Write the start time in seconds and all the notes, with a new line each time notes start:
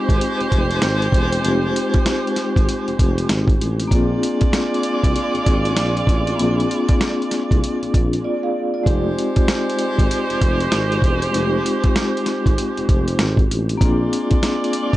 Already playing: G#3 C4 D#4 F4 G4 C5
0.09 G#1, kick, closed hi-hat
0.21 closed hi-hat
0.40 F1, closed hi-hat
0.52 F1, kick, closed hi-hat
0.71 closed hi-hat
0.82 G#1, snare, closed hi-hat
1.02 closed hi-hat
1.12 E1, kick, closed hi-hat
1.32 closed hi-hat
1.40 F1 G#3 C4 D#4
1.45 F4 G4, closed hi-hat
1.76 closed hi-hat
1.94 kick, closed hi-hat
2.06 snare, closed hi-hat
2.27 closed hi-hat
2.36 snare, closed hi-hat
2.56 G#1, kick, closed hi-hat
2.69 closed hi-hat
2.87 F1, closed hi-hat
2.99 F1, kick, closed hi-hat
3.18 closed hi-hat
3.29 G#1, snare, closed hi-hat
3.48 kick, closed hi-hat
3.60 A1, closed hi-hat
3.80 closed hi-hat
3.87 A#1 A#3 C4 D4, kick
3.92 G#3 F4 G#4 D5, closed hi-hat
4.23 closed hi-hat
4.41 kick, closed hi-hat
4.53 snare, closed hi-hat
4.74 closed hi-hat
4.83 closed hi-hat
5.04 C2, kick, closed hi-hat
5.16 closed hi-hat
5.34 G#1, closed hi-hat
5.46 G#1, kick, closed hi-hat
5.65 closed hi-hat
5.77 A#1, snare, closed hi-hat
5.97 closed hi-hat
6.07 A1, kick, closed hi-hat
6.27 closed hi-hat
6.35 A#1 A#3 C4 D4
6.39 F4 G#4, closed hi-hat
6.60 closed hi-hat
6.71 closed hi-hat
6.89 kick, closed hi-hat
7.01 snare, closed hi-hat
7.22 closed hi-hat
7.31 snare, closed hi-hat
7.51 C2, kick, closed hi-hat
7.64 closed hi-hat
7.82 A#1, closed hi-hat
7.94 A#1, kick, closed hi-hat
8.13 closed hi-hat
8.24 F4 D5
8.43 G#4 F5
8.74 F4 D5
8.83 F1 G#3 C4 D#4 G4 C5, kick, closed hi-hat
8.88 F4 G4
9.19 closed hi-hat
9.36 kick, closed hi-hat
9.48 snare, closed hi-hat
9.70 closed hi-hat
9.79 closed hi-hat
9.99 G#1, kick, closed hi-hat
10.11 closed hi-hat
10.29 F1, closed hi-hat
10.41 F1, kick, closed hi-hat
10.60 closed hi-hat
10.72 G#1, snare, closed hi-hat
10.92 closed hi-hat
11.02 E1, kick, closed hi-hat
11.22 closed hi-hat
11.30 F1 G#3 C4 D#4
11.34 F4 G4, closed hi-hat
11.66 closed hi-hat
11.84 kick, closed hi-hat
11.96 snare, closed hi-hat
12.17 closed hi-hat
12.26 snare, closed hi-hat
12.46 G#1, kick, closed hi-hat
12.58 closed hi-hat
12.77 F1, closed hi-hat
12.89 F1, kick, closed hi-hat
13.08 closed hi-hat
13.19 G#1, snare, closed hi-hat
13.37 kick, closed hi-hat
13.50 A1, closed hi-hat
13.69 closed hi-hat
13.77 A#1 A#3 C4 D4, kick, closed hi-hat
13.82 G#3 F4 G#4 D5
14.13 closed hi-hat
14.31 kick, closed hi-hat
14.43 snare, closed hi-hat
14.64 closed hi-hat
14.73 closed hi-hat
14.93 C2, kick